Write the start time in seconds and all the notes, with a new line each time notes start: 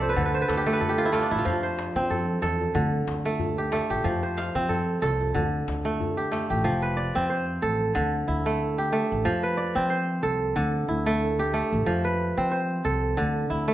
Already playing: C2 F3 A3 C4 G4 A4 D5 E5 G5
0.02 C5, djembe tone
0.09 B4
0.16 D2 D3 A4, djembe slap, djembe bass
0.25 B4
0.34 C5
0.42 B4
0.48 D2 A4, djembe slap
0.57 G4
0.66 A3 A4, djembe tone
0.73 B4
0.80 A4, djembe bass
0.89 G4
0.98 F4, djembe slap
1.05 E4
1.12 A3 F4, djembe slap
1.22 D4
1.31 A1 E4, djembe slap, djembe tone
1.38 F4
1.45 F2 F3, djembe bass
1.63 C5, djembe slap
1.78 djembe slap
1.96 F3 C4, djembe tone
2.10 A4, djembe bass
2.42 E2 A4, djembe slap
2.61 djembe tone
2.75 D2 D3, djembe slap, djembe bass
3.07 D2, djembe slap
3.25 A3, djembe tone
3.40 djembe bass
3.58 G4
3.72 A3, djembe slap
3.90 A1 G4, djembe slap, djembe tone
4.04 F2 F3, djembe slap, djembe bass
4.23 C5
4.37 F5, djembe slap
4.55 F3 C4, djembe tone
4.69 A4, djembe slap, djembe bass
5.02 C2 A4, djembe slap
5.21 djembe tone
5.34 D2 D3, djembe bass
5.68 D2, djembe slap
5.85 A3, djembe slap, djembe tone
6.01 djembe bass
6.17 G4
6.32 A3, djembe slap
6.50 A1 G4, djembe tone
6.64 F1 F3
6.82 B4
6.97 D5
7.15 F2 C4
7.30 C5
7.62 A1 A4
7.95 D2 D3
8.28 D2 E4
8.46 A3
8.78 G4
8.92 A3
9.12 A1
9.25 F2 F3
9.43 B4
9.57 D5
9.75 F3 C4
9.90 C5
10.23 C2 A4
10.56 D2 D3
10.88 D2 E4
11.06 A3
11.39 G4
11.54 A3
11.72 A1
11.86 F2 F3
12.05 B4
12.37 F3 C4
12.52 C5
12.85 C2 A4
13.17 D2 D3
13.50 D2 E4
13.68 A3